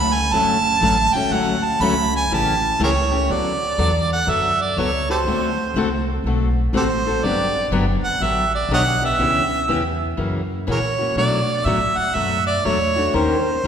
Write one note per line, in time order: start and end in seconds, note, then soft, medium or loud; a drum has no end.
0.00 0.31 C#2 loud
0.00 0.15 B5 loud
0.14 0.34 G#5 loud
0.32 0.80 F#1 medium
0.32 0.56 D3 medium
0.32 0.56 F#3 medium
0.32 0.56 A3 medium
0.32 0.56 C#4 medium
0.32 0.56 F#4 medium
0.32 1.15 A5 loud
0.81 1.12 A1 loud
0.81 0.94 D3 medium
0.81 0.94 F#3 loud
0.81 0.94 A3 medium
0.81 0.95 C#4 medium
0.81 0.95 F#4 loud
1.14 1.31 A3 medium
1.14 1.32 C#4 medium
1.14 1.32 F#4 medium
1.14 1.34 G5 loud
1.14 muted upright bass stroke medium
1.30 1.79 D2 medium
1.30 1.54 D3 medium
1.30 1.54 F#3 medium
1.30 1.54 A3 medium
1.30 1.55 C#4 medium
1.30 1.55 F#4 medium
1.30 1.66 F#5 medium
1.64 1.84 A5 loud
1.80 2.28 C#2 loud
1.80 1.93 D3 medium
1.80 1.93 F#3 loud
1.80 1.93 A3 loud
1.80 1.93 C#4 loud
1.80 1.94 F#4 loud
1.80 2.14 B5 loud
2.16 2.35 G#5 loud
2.30 2.78 A1 medium
2.30 2.53 C#3 medium
2.30 2.53 E3 medium
2.30 2.53 A3 medium
2.30 2.53 C#4 medium
2.30 2.54 G4 medium
2.30 2.82 A5 medium
2.80 3.28 C#2 loud
2.80 2.91 C#3 medium
2.80 2.92 E3 loud
2.80 2.92 A3 loud
2.80 2.92 C#4 loud
2.80 2.92 G4 loud
2.80 2.90 G#4 medium
2.80 2.90 A#4 medium
2.80 3.34 C#5 loud
3.11 3.29 A3 medium
3.11 3.29 C#4 medium
3.11 3.28 G4 medium
3.29 3.77 D2 medium
3.29 3.51 D3 medium
3.29 3.51 F#3 medium
3.29 3.51 B3 medium
3.29 3.52 F#4 medium
3.29 3.51 A4 medium
3.29 4.12 D5 loud
3.78 4.26 E2 medium
3.78 3.90 D3 medium
3.78 3.90 F#3 medium
3.78 3.90 B3 medium
3.78 3.90 F#4 medium
3.78 3.90 A4 loud
4.13 4.32 F#5 loud
4.27 4.75 F#2 medium
4.27 4.49 D3 medium
4.27 4.49 F#3 medium
4.27 4.49 B3 medium
4.27 4.49 F#4 medium
4.27 4.50 A4 medium
4.27 4.63 E5 loud
4.61 4.80 D5 medium
4.77 5.24 C#2 medium
4.77 4.89 D3 medium
4.77 4.89 F#3 medium
4.77 4.89 B3 medium
4.77 4.90 F#4 medium
4.77 4.90 A4 loud
4.77 5.10 C#5 medium
5.09 5.27 B3 soft
5.09 5.26 F#4 medium
5.09 5.17 G4 medium
5.09 5.26 A4 medium
5.09 5.19 A4 medium
5.09 6.22 C5 medium
5.25 5.73 D2 medium
5.25 5.48 D3 medium
5.25 5.49 A3 medium
5.25 5.49 C4 medium
5.25 5.49 F#4 medium
5.25 5.49 A4 medium
5.74 6.23 C2 medium
5.74 5.87 D3 medium
5.74 5.88 A3 medium
5.74 5.88 C4 loud
5.74 5.88 F#4 medium
5.74 5.88 A4 loud
6.24 6.72 B1 medium
6.24 6.47 D3 medium
6.24 6.48 A3 medium
6.24 6.48 C4 medium
6.24 6.48 F#4 medium
6.24 6.48 A4 medium
6.73 7.21 A1 medium
6.73 6.85 D3 medium
6.73 6.86 A3 medium
6.73 6.86 C4 loud
6.73 6.86 F#4 loud
6.73 6.83 G4 medium
6.73 6.86 A4 loud
6.73 6.85 A4 medium
6.73 7.26 C5 loud
7.07 7.24 C4 soft
7.07 7.24 F#4 medium
7.07 7.23 A4 medium
7.23 7.70 G1 medium
7.23 7.45 D3 medium
7.23 7.46 F#3 medium
7.23 7.46 B3 medium
7.23 7.46 D4 medium
7.23 7.46 G4 medium
7.23 7.73 D5 loud
7.71 8.01 F#1 medium
7.71 7.84 D3 loud
7.71 7.84 F#3 medium
7.71 7.84 B3 loud
7.71 7.84 D4 loud
7.71 7.84 G4 loud
8.03 8.24 F#5 loud
8.03 muted upright bass stroke soft
8.20 8.68 A1 medium
8.20 8.43 D3 medium
8.20 8.44 F#3 medium
8.20 8.44 B3 medium
8.20 8.44 D4 medium
8.20 8.44 G4 medium
8.20 8.54 E5 medium
8.55 8.71 D5 medium
8.69 9.18 B1 medium
8.69 8.83 D3 medium
8.69 8.83 F#3 medium
8.69 8.83 B3 medium
8.69 8.83 D4 loud
8.69 8.83 G4 medium
8.74 8.81 C#5 medium
8.74 8.82 D#5 medium
8.74 9.02 F#5 loud
9.02 9.19 B3 soft
9.02 9.19 D4 medium
9.02 9.19 G4 medium
9.02 9.98 E5 loud
9.19 9.67 C#2 medium
9.19 9.42 C#3 medium
9.19 9.42 E3 medium
9.19 9.42 B3 medium
9.19 9.42 C#4 medium
9.19 9.42 G4 medium
9.68 10.17 E2 medium
9.68 9.80 C#3 medium
9.68 9.81 E3 medium
9.68 9.81 B3 loud
9.68 9.81 C#4 medium
9.68 9.81 G4 loud
10.17 10.66 F#2 medium
10.17 10.40 C#3 medium
10.17 10.40 E3 medium
10.17 10.40 A#3 medium
10.17 10.40 C#4 medium
10.17 10.40 F#4 medium
10.67 11.15 A#2 medium
10.67 10.79 C#3 medium
10.67 10.79 E3 medium
10.67 10.79 A#3 medium
10.67 10.79 C#4 medium
10.67 10.80 F#4 medium
10.67 10.79 G#4 medium
10.67 10.79 A#4 medium
10.67 11.15 C#5 medium
10.99 11.17 A#3 soft
10.99 11.17 C#4 soft
10.99 11.16 F#4 soft
11.15 11.64 B2 medium
11.15 11.39 B2 medium
11.15 11.39 F#3 medium
11.15 11.39 A3 medium
11.15 11.39 D4 medium
11.15 11.39 F#4 medium
11.15 11.68 D5 loud
11.65 11.95 A2 medium
11.65 11.78 B2 loud
11.65 11.78 F#3 medium
11.65 11.78 A3 medium
11.65 11.78 D4 medium
11.65 11.78 F#4 loud
11.65 11.99 E5 loud
11.97 12.16 F#5 loud
11.97 muted upright bass stroke soft
12.14 12.63 F#2 medium
12.14 12.37 B2 medium
12.14 12.37 F#3 medium
12.14 12.37 A3 medium
12.14 12.37 D4 medium
12.14 12.37 F#4 medium
12.14 12.46 E5 loud
12.47 12.67 D5 loud
12.65 13.13 E2 medium
12.65 12.77 B2 medium
12.65 12.77 F#3 medium
12.65 12.77 A3 medium
12.65 12.77 D4 loud
12.65 12.77 F#4 medium
12.65 13.17 C#5 loud
12.96 13.14 A3 medium
12.96 13.14 D4 medium
12.96 13.13 F#4 medium
13.13 13.62 D#2 medium
13.13 13.35 D#3 medium
13.13 13.36 A#3 medium
13.13 13.36 C#4 medium
13.13 13.36 G4 medium
13.13 13.36 A#4 medium
13.13 13.67 C5 medium
13.64 13.67 C#2 medium